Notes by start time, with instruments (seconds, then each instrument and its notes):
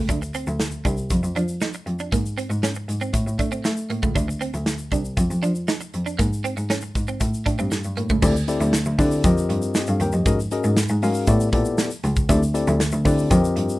0.09 cello D2, clean electric guitar D4, kick, closed hi-hat, shaker
0.22 muted clean electric guitar stroke, shaker
0.34 clean electric guitar C4, closed hi-hat, shaker
0.47 cello D2, shaker
0.60 snare, closed hi-hat, shaker
0.71 shaker
0.85 cello C2, clean electric guitar D4, kick, closed hi-hat, shaker
0.97 shaker
1.10 cello F2, kick, closed hi-hat, shaker
1.23 cello F2, shaker
1.36 cello F3, clean electric guitar D4, closed hi-hat, shaker
1.48 shaker
1.61 clean electric guitar D#4, snare, closed hi-hat, shaker
1.73 muted clean electric guitar stroke, shaker
1.86 cello F2, closed hi-hat
1.99 clean electric guitar D4, shaker
2.12 cello G#2, clean electric guitar A#3, kick, closed hi-hat, shaker
2.26 shaker
2.38 clean electric guitar C4, closed hi-hat, shaker
2.50 cello G#2, muted clean electric guitar stroke, shaker
2.63 clean electric guitar C#4, snare, closed hi-hat, shaker
2.75 muted clean electric guitar stroke, shaker
2.88 cello G#2, closed hi-hat, shaker
3.01 clean electric guitar C4, shaker
3.13 cello A2, muted clean electric guitar stroke, kick, closed hi-hat, shaker
3.27 cello A2, shaker
3.39 cello A3, clean electric guitar D4, kick, closed hi-hat, shaker
3.52 clean electric guitar C4, shaker
3.64 cello A3, muted clean electric guitar stroke, snare, closed hi-hat, shaker
3.77 shaker
3.90 cello A2, clean electric guitar A#3, closed hi-hat
4.03 cello C#2, clean electric guitar A3, kick, shaker
4.15 cello D2, clean electric guitar D4, kick, closed hi-hat, shaker
4.28 muted clean electric guitar stroke, shaker
4.41 clean electric guitar C4, closed hi-hat, shaker
4.54 cello D2, closed hi-hat, shaker
4.66 snare, closed hi-hat, shaker
4.78 shaker
4.92 cello C2, clean electric guitar D4, kick, closed hi-hat, shaker
5.05 shaker
5.17 cello F2, kick, closed hi-hat, shaker
5.31 cello F2, shaker
5.43 cello F3, clean electric guitar D4, closed hi-hat, shaker
5.55 shaker
5.68 clean electric guitar D#4, snare, closed hi-hat, shaker
5.81 muted clean electric guitar stroke, shaker
5.94 cello F2, closed hi-hat
6.06 clean electric guitar D4, shaker
6.19 cello G#2, clean electric guitar A#3, kick, closed hi-hat, shaker
6.33 shaker
6.44 clean electric guitar C4, closed hi-hat, shaker
6.57 cello G#2, muted clean electric guitar stroke, closed hi-hat, shaker
6.70 clean electric guitar C#4, snare, closed hi-hat, shaker
6.81 muted clean electric guitar stroke, shaker
6.95 cello G#2, kick, closed hi-hat, shaker
7.08 clean electric guitar C4, shaker
7.21 cello A2, muted clean electric guitar stroke, kick, closed hi-hat, shaker
7.34 shaker
7.46 cello A2, clean electric guitar D4, kick, closed hi-hat, shaker
7.59 cello G2, clean electric guitar C4, shaker
7.71 muted clean electric guitar stroke, snare, closed hi-hat, shaker
7.84 cello G2, shaker
7.97 cello A2, clean electric guitar A#3, closed hi-hat
8.09 cello C#2, clean electric guitar A3, kick, shaker
8.22 cello D2, tine electric piano C4 E4 G4 A4 D5, kick, crash, shaker
8.36 shaker
8.48 tine electric piano C4 E4 G4 A4 D5, closed hi-hat, shaker
8.60 cello D2, closed hi-hat, shaker
8.73 snare, closed hi-hat, shaker
8.85 cello D2, shaker
8.99 cello D3, tine electric piano C4 E4 G4 A4 D5, kick, open hi-hat, shaker
9.12 shaker
9.24 cello F2, tine electric piano C4 F4 G4 A#4 D#5, kick, closed hi-hat, shaker
9.38 shaker
9.49 cello G2, closed hi-hat
9.62 shaker
9.75 tine electric piano G4 D#5, snare, closed hi-hat, shaker
9.87 cello G2, tine electric piano A4 F5, closed hi-hat, shaker
10.00 cello D#2, tine electric piano A#4 G5, closed hi-hat, shaker
10.12 cello F2, tine electric piano G4 D#5, shaker
10.26 cello G#2, tine electric piano C#4 F#4 G#4 A#4 D#5, kick, closed hi-hat, shaker
10.40 shaker
10.51 tine electric piano C#4 F#4 G#4 A#4 D#5, closed hi-hat, shaker
10.64 cello G#2, shaker
10.77 snare, closed hi-hat, shaker
10.88 cello G#2, shaker
11.02 cello G#3, tine electric piano C#4 F#4 G#4 A#4 F5, open hi-hat, shaker
11.14 shaker
11.27 cello A2, tine electric piano B3 E4 G4 A4 D5, kick, closed hi-hat, shaker
11.40 shaker
11.53 cello A#2, tine electric piano B3 E4 G4 A4 D5, kick, closed hi-hat
11.65 shaker
11.78 snare, closed hi-hat, shaker
11.90 closed hi-hat, shaker
12.03 cello C#2, closed hi-hat, shaker
12.16 kick, shaker
12.29 cello D2, tine electric piano C4 E4 G4 A4 D5, kick, closed hi-hat, shaker
12.43 shaker
12.54 tine electric piano C4 E4 G4 A4 D5, closed hi-hat, shaker
12.67 cello D2, closed hi-hat, shaker
12.80 snare, closed hi-hat, shaker
12.92 cello D2, shaker
13.05 cello D3, tine electric piano C4 E4 G4 A4 D5, kick, open hi-hat, shaker
13.18 shaker
13.31 cello F2, tine electric piano C4 F4 G4 A#4 D#5, kick, closed hi-hat, shaker
13.45 shaker
13.56 cello G2, closed hi-hat
13.69 shaker